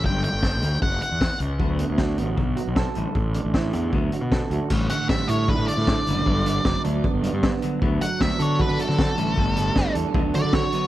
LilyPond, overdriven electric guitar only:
\new Staff \with { instrumentName = "Overdriven electric guitar" } { \time 4/4 \key d \major \tempo 4 = 154 r1 | d8 b8 fis'8 b8 fis8 fis'8 a'8 a,8 | a,8 d'8 e'8 d'8 d8 fis'8 a'8 fis'8 | a,8 d8 g8 e'8 d'8 d8 d'8 d8 |
g,8 d8 fis8 d'8 b8 d8 b8 d8 | d8 fis8 b8 a'8 fis'8 fis8 fis'8 a,8 | a,8 g8 d'8 a'8 d8 fis8 fis'8 fis8 | }